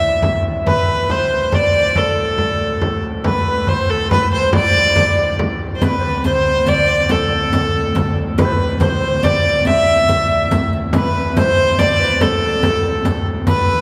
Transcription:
Already playing: D2 A2 E5
0.23 frame drum
0.45 frame drum
0.65 D2 A2 B4, frame drum
0.89 frame drum
1.10 C5, frame drum
1.52 D5, frame drum
1.74 frame drum
1.96 A4, frame drum
2.17 frame drum
2.38 frame drum
2.81 frame drum
3.03 frame drum
3.24 B4, frame drum
3.46 B4, frame drum
3.67 C5, frame drum
3.89 A4
4.11 B4, frame drum
4.32 C5, frame drum
4.53 D5, frame drum
4.75 frame drum
4.96 frame drum
5.39 frame drum
5.75 C5
5.81 D2 A2 B4, riq, frame drum
5.98 C5
6.03 B4, frame drum
6.24 C5, riq, frame drum
6.66 D5, riq, frame drum
6.89 frame drum
7.09 A4, riq, frame drum
7.32 frame drum
7.53 riq, frame drum
7.95 riq, frame drum
8.17 frame drum
8.38 B4, riq, frame drum
8.44 C5
8.52 B4
8.60 frame drum
8.80 C5, riq, frame drum
9.03 C5
9.23 D5, riq, frame drum
9.45 frame drum
9.65 E5, riq, frame drum
10.08 riq, frame drum
10.51 riq, frame drum
10.73 riq, frame drum
10.93 D2 A2 B4, riq, frame drum
11.15 B4, frame drum
11.36 C5, riq, frame drum
11.79 D5, riq, frame drum
11.99 B4, frame drum
12.21 A4, riq, frame drum
12.42 frame drum
12.63 riq, frame drum
13.05 riq, frame drum
13.26 frame drum
13.47 B4, riq, frame drum
13.68 frame drum

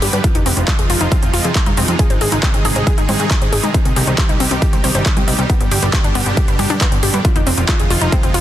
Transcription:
Already playing: D3 G3 B3 G4 B4
0.02 G1 G4, open hi-hat
0.13 G2 B4, closed hi-hat
0.24 C3 F3 G#3 D#4 F4, kick, closed hi-hat
0.35 F1 D#4, closed hi-hat
0.46 F1 C4, open hi-hat
0.57 F1 C4, closed hi-hat
0.68 F4, kick, clap, closed hi-hat
0.79 F1 G#4, closed hi-hat
0.90 F1 F4, open hi-hat
1.01 F1 D#4, closed hi-hat
1.12 C4, kick, closed hi-hat
1.23 F1 C4, closed hi-hat
1.34 F1 F4, open hi-hat
1.44 F2 G#4, closed hi-hat
1.55 F4, kick, clap, closed hi-hat
1.66 F1 D#4, closed hi-hat, high conga
1.77 F1 C4, open hi-hat
1.88 F2 C4, closed hi-hat
1.99 C3 D#3 G#4, kick, closed hi-hat
2.10 G#1 C5, closed hi-hat
2.21 G#1 G#4, open hi-hat
2.32 G#1 D#4, closed hi-hat
2.43 C4, kick, clap, closed hi-hat
2.54 G#1 C4, closed hi-hat
2.65 G#1 G#4, open hi-hat
2.76 G#1 C5, closed hi-hat
2.87 G#4, kick, closed hi-hat
2.98 G#1 D#4, closed hi-hat
3.09 G#1 C4, open hi-hat, high conga
3.20 G#2 C4, closed hi-hat
3.31 G#4, kick, clap, closed hi-hat
3.42 G#1 C5, closed hi-hat
3.53 G#1 G#4, open hi-hat
3.63 G#2 D#4, closed hi-hat
3.74 G3 C4 G4, kick, closed hi-hat
3.85 C2 C4, closed hi-hat
3.96 C2 G4, open hi-hat
4.07 C2 C5, closed hi-hat
4.18 G4, kick, clap, closed hi-hat
4.29 C2 D#4, closed hi-hat
4.40 C2 C4, open hi-hat
4.51 C2 C4, closed hi-hat
4.62 G4, kick, closed hi-hat
4.73 C2 C5, closed hi-hat
4.84 C2 C5, open hi-hat
4.95 G1 C5, closed hi-hat
5.06 C4, kick, clap, closed hi-hat
5.17 C2 C4, closed hi-hat, high conga
5.28 C2 D#5, open hi-hat
5.39 C2 C4, closed hi-hat
5.50 B2 D3 B3 D4 G4, kick, closed hi-hat
5.61 G1 B3, closed hi-hat
5.71 G1 G4, open hi-hat
5.82 G1 B4, closed hi-hat
5.93 G4, kick, clap, closed hi-hat
6.04 G1 D4, closed hi-hat
6.15 G1 B3, open hi-hat
6.26 G1 B3, closed hi-hat
6.37 G4, kick, closed hi-hat
6.48 G1 B4, closed hi-hat
6.59 G1 G4, open hi-hat, high conga
6.70 G2 D4, closed hi-hat
6.81 B3, kick, clap, closed hi-hat
6.92 G1 B3, closed hi-hat
7.03 G1 G4, open hi-hat
7.14 G2 B4, closed hi-hat
7.25 C3 F3 G#3 D#4 F4, kick, closed hi-hat
7.36 F1 D#4, closed hi-hat
7.47 F1 C4, open hi-hat
7.58 F1 C4, closed hi-hat
7.69 F4, kick, clap, closed hi-hat
7.80 F1 G#4, closed hi-hat
7.90 F1 F4, open hi-hat
8.01 F1 D#4, closed hi-hat
8.12 C4, kick, closed hi-hat
8.23 F1 C4, closed hi-hat
8.34 F1 F4, open hi-hat

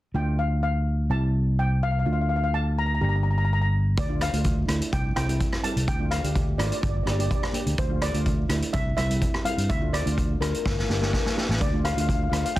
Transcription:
0.14 D2 A3 D4 F4 G5
0.39 F5
0.63 F5
1.10 C2 G3 C4 E4 A5
1.59 G5
1.83 F5
1.91 F5
1.99 F5
2.05 D2 A3 D4 F4 F5
2.13 F5
2.21 F5
2.29 F5
2.36 F5
2.44 F5
2.54 A5
2.79 A#5
2.86 A#5
2.95 A#5
3.01 G1 A#3 D4 G4 A#5
3.09 A#5
3.16 A#5
3.23 A#5
3.31 A#5
3.38 A#5
3.45 A#5
3.53 A#5
3.61 A#5
3.98 D2 D5, kick, closed hi-hat
4.09 A3 D4 F4
4.21 F5, cross-stick, closed hi-hat
4.33 D2 A3 D4 F4, closed hi-hat
4.44 kick, closed hi-hat
4.68 D2 A3 D4 E4, cross-stick, closed hi-hat
4.81 closed hi-hat
4.93 C2 G5, kick, closed hi-hat
5.16 C2 G3 C4 E4 G5, cross-stick, closed hi-hat
5.28 G3 C4 E4, closed hi-hat
5.40 kick, closed hi-hat
5.53 cross-stick
5.63 G3 C4 E4 A5, closed hi-hat
5.76 C2, closed hi-hat
5.88 D2 G5, kick, closed hi-hat
5.99 A3 D4 F4
6.11 F5, cross-stick, closed hi-hat
6.24 D2 A3 D4 G4, closed hi-hat
6.35 kick, closed hi-hat
6.58 G#1 A3 D4 F4 D5, cross-stick, closed hi-hat
6.67 D5
6.72 D5, closed hi-hat
6.81 G1 D5, kick, closed hi-hat
6.89 D5
6.97 D5
7.03 G1 A#3 D4 G4 D5, cross-stick, closed hi-hat
7.11 D5
7.18 A#3 D4 G4 D5, closed hi-hat
7.26 D5
7.31 kick, closed hi-hat
7.35 D5
7.43 D5, cross-stick
7.53 A#3 D4 G4, closed hi-hat
7.66 D2, closed hi-hat
7.78 D2 C5, kick, closed hi-hat
7.90 A3 D4 F4
8.02 D5, cross-stick, closed hi-hat
8.14 D2 A3 D4 F4, closed hi-hat
8.26 kick, closed hi-hat
8.49 D2 A3 D4 E4, cross-stick, closed hi-hat
8.62 closed hi-hat
8.73 C2 E5, kick, closed hi-hat
8.97 C2 G3 C4 E4 E5, cross-stick, closed hi-hat
9.09 G3 C4 E4, closed hi-hat
9.21 kick, closed hi-hat
9.34 cross-stick
9.45 G3 C4 E4 F5, closed hi-hat
9.58 G2, closed hi-hat
9.69 D2 E5, kick, closed hi-hat
9.82 A3 D4 F4
9.93 D5, cross-stick, closed hi-hat
10.06 D2 A3 D4 F4, closed hi-hat
10.18 kick, closed hi-hat
10.40 D2 A3 D4 F4 A#4, cross-stick, closed hi-hat
10.48 A#4
10.54 A#4, closed hi-hat
10.63 G1 A#4, kick, snare
10.71 A#4
10.79 A#4, snare
10.86 G1 A#3 D4 G4 A#4, snare
10.93 A#4
11.01 A#3 D4 G4 A#4, snare
11.08 A#4
11.13 A#4, kick, snare
11.23 A#4, snare
11.36 A#3 D4 G4, snare
11.49 A1, snare
11.61 D2 D5, kick, closed hi-hat
11.73 A3 D4 F4
11.84 F5, cross-stick, closed hi-hat
11.92 F5
11.96 D2 A3 D4 F4 F5, closed hi-hat
12.07 F5, kick, closed hi-hat
12.14 F5
12.23 F5
12.29 D2 A3 D4 F4 F5, cross-stick, closed hi-hat
12.38 F5
12.45 F5, closed hi-hat
12.56 C2 G5, kick

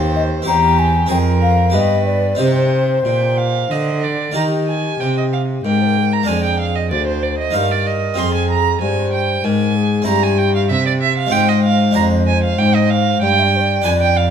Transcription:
Already playing: D#2 C4 G4 C5
0.16 D#5
0.42 C4 G4 C5
0.47 E2 A#5
0.79 G#5
1.06 F2 C4 G#4 A#4 C5
1.11 F2 G5
1.42 F5
1.70 B3 G4
1.74 G2 B4 D#5
2.06 D5
2.35 C4 D#4 G4
2.39 C3 C5
3.05 A#2 G5
3.38 F5
3.71 D3 D#5
4.03 D5
4.31 A#3 D#4 G4
4.36 D#3 G4 A#5
4.68 G#5
5.00 C3 G5
5.18 D#5
5.33 F5
5.65 G#2 A#4 G5
5.82 C5
5.86 A#4
5.99 G#4
6.03 A#4
6.13 A#5
6.23 A#3 D4 A#4 G#5
6.28 F2 G#4
6.44 G5
6.60 F5
6.75 D#5
6.91 D2 C5 D5
7.07 C5
7.23 D5
7.38 D#5
7.51 A#3 D#4 A#4 F5
7.55 G2 A#4
7.71 D5
7.87 D#5
8.14 C4 F4 G#4
8.18 F2 G#4 C6
8.35 G#5
8.50 A#5
8.81 G2 C5 G#5
9.13 G5
9.44 G#2 A#4 G#5
9.76 G#4
10.02 C4 E4 C5
10.07 G2 G4 A#5
10.23 G#5
10.38 G5
10.55 F5
10.70 C3 E5
10.86 D5
11.02 E5
11.18 F5
11.26 G#3 C4 F4
11.31 G#2 C5 G5
11.49 D#5
11.64 F5
11.91 G#3 D4 C5
11.96 F2 A#5
12.27 G#5
12.43 F5
12.58 G#2 G5
12.75 D#5
12.89 F5
13.22 G2 D5 G5
13.39 E5
13.43 D5
13.56 C5
13.60 D5
13.82 F2 D4 B4 G#5
14.01 G5
14.17 F5

